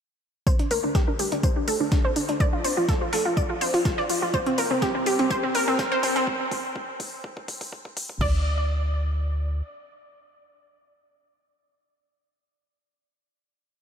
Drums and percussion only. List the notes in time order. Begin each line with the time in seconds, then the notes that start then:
0.47 kick, tambourine
0.59 closed hi-hat
0.71 open hi-hat, tambourine
0.95 kick, snare, tambourine
1.19 open hi-hat, tambourine
1.32 closed hi-hat
1.43 kick, tambourine
1.68 open hi-hat, tambourine
1.92 kick, snare, tambourine
2.16 open hi-hat, tambourine
2.29 closed hi-hat
2.40 kick, tambourine
2.64 open hi-hat, tambourine
2.89 kick, snare, tambourine
3.13 snare, open hi-hat
3.37 kick, tambourine
3.61 open hi-hat, tambourine
3.74 closed hi-hat, open hi-hat
3.85 kick, snare, tambourine
3.98 snare
4.09 open hi-hat, tambourine
4.34 kick, tambourine
4.46 closed hi-hat
4.58 open hi-hat, tambourine
4.82 kick, snare, tambourine
5.06 open hi-hat, tambourine
5.19 closed hi-hat
5.30 kick, tambourine
5.55 open hi-hat, tambourine
5.79 kick, snare, tambourine
6.03 open hi-hat, tambourine
6.16 closed hi-hat
6.27 kick
6.51 kick, open hi-hat
6.76 kick
7.00 kick, open hi-hat
7.24 kick
7.37 kick
7.48 kick, open hi-hat
7.61 kick, open hi-hat
7.72 kick
7.85 kick
7.97 kick, open hi-hat
8.09 kick
8.21 kick, crash